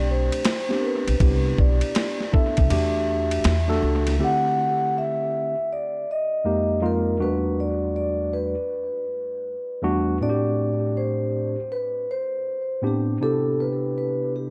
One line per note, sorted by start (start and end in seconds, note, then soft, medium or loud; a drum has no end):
0.00 0.28 B1 medium
0.00 0.45 A3 medium
0.00 0.46 C4 medium
0.00 0.46 D4 medium
0.00 0.46 G4 medium
0.11 0.82 C5 medium
0.32 ride medium
0.45 snare loud
0.45 hi-hat pedal medium
0.45 ride medium
0.69 1.15 B3 medium
0.69 1.15 C4 medium
0.69 1.15 D4 medium
0.69 1.15 G4 medium
0.69 snare soft
0.80 0.84 A#4 medium
0.86 1.61 B4 medium
1.07 1.19 B1 medium
1.07 ride medium
1.20 1.54 C2 loud
1.20 2.22 B3 medium
1.20 2.22 D4 medium
1.20 2.22 E4 medium
1.20 2.23 G4 medium
1.20 kick loud
1.20 ride medium
1.58 1.80 B1 medium
1.58 2.30 D5 medium
1.58 kick medium
1.81 ride medium
1.95 snare loud
1.95 hi-hat pedal soft
1.95 ride medium
2.20 snare soft
2.32 2.70 B3 medium
2.32 2.69 D4 medium
2.32 2.70 E4 medium
2.32 2.71 A4 medium
2.32 2.70 E5 medium
2.32 kick loud
2.57 2.69 C2 medium
2.57 kick medium
2.57 ride medium
2.70 3.38 E2 medium
2.70 3.52 A3 medium
2.70 3.53 D4 medium
2.70 3.53 F#4 medium
2.70 3.53 G4 medium
2.70 3.79 E5 medium
2.70 ride medium
3.31 ride medium
3.44 3.79 E2 medium
3.44 snare loud
3.44 hi-hat pedal medium
3.44 ride medium
3.67 4.14 A3 medium
3.67 4.14 D4 medium
3.67 4.14 F#4 medium
3.67 4.15 A4 medium
3.67 snare soft
3.82 4.16 C#2 medium
4.07 snare soft
4.07 ride medium
4.19 5.54 D3 medium
4.19 5.54 A3 medium
4.19 5.54 C4 medium
4.19 5.55 E4 medium
4.19 5.55 G4 medium
4.24 4.93 F#5 loud
4.98 5.68 E5 medium
5.73 6.10 D5 medium
6.11 6.87 D#5 medium
6.44 6.79 F2 medium
6.44 6.79 G#3 medium
6.44 6.79 A#3 medium
6.44 6.79 D#4 medium
6.44 6.80 G4 medium
6.81 7.16 F2 medium
6.81 7.16 G#3 medium
6.81 7.16 A#3 medium
6.81 7.16 D#4 medium
6.81 7.17 F4 medium
6.86 7.23 A#4 medium
7.19 8.54 E2 medium
7.19 8.54 G3 medium
7.19 8.54 A3 medium
7.19 8.54 D4 medium
7.19 8.55 F#4 medium
7.19 7.60 B4 medium
7.60 7.95 D5 medium
7.96 8.34 D5 medium
8.33 9.79 B4 medium
9.82 10.16 E2 medium
9.82 10.17 G3 medium
9.82 10.17 A3 medium
9.82 10.17 D4 medium
9.82 10.17 F#4 loud
10.21 11.55 A2 medium
10.21 11.55 A3 medium
10.21 11.55 C4 medium
10.21 11.56 D4 medium
10.21 10.30 F#4 medium
10.21 10.99 D5 loud
10.29 11.59 G4 medium
10.97 11.73 C5 medium
11.72 12.10 B4 medium
12.11 12.80 C5 loud
12.82 13.16 A2 medium
12.82 13.17 B3 medium
12.82 13.17 C4 medium
12.82 13.17 D4 medium
12.82 13.17 G4 medium
12.87 13.23 G4 medium
13.21 14.50 C3 medium
13.21 14.50 B3 medium
13.21 14.50 D4 medium
13.21 14.50 E4 medium
13.21 14.50 G4 medium
13.21 13.60 A4 loud
13.60 13.97 B4 medium
13.98 14.32 B4 medium
14.36 14.50 G4 medium